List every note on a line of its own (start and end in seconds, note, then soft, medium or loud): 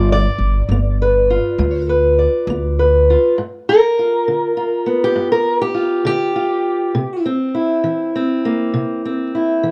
0.00 0.25 G1 loud
0.00 0.35 G3 medium
0.00 0.11 D5 medium
0.12 1.90 D5 medium
0.39 0.61 G1 medium
0.69 1.36 G1 medium
0.69 1.24 B3 medium
1.02 1.88 B4 soft
1.30 3.08 F4 soft
1.58 2.26 D2 medium
1.58 2.12 G3 medium
1.89 2.78 B4 soft
2.19 3.34 D5 soft
2.47 3.15 D2 medium
2.47 3.03 B3 medium
2.79 3.34 B4 soft
3.10 3.35 F4 medium
3.38 3.91 G2 medium
3.69 5.02 A#4 medium
3.99 4.56 F4 soft
4.28 4.81 D3 medium
4.57 5.73 F4 soft
4.86 6.91 B3 soft
5.04 5.31 G4 medium
5.16 5.69 G2 medium
5.32 5.61 A#4 medium
5.62 6.05 G4 medium
5.74 6.34 F4 soft
6.05 6.58 D3 medium
6.05 7.25 G4 loud
6.36 6.91 F4 medium
6.95 7.48 C3 medium
7.26 8.14 C4 soft
7.55 9.32 E4 soft
7.84 8.37 E3 medium
8.15 9.03 C4 medium
8.45 9.71 A#3 soft
8.74 9.27 C3 medium
9.05 9.71 C4 soft
9.35 9.71 E4 soft
9.63 9.71 E3 medium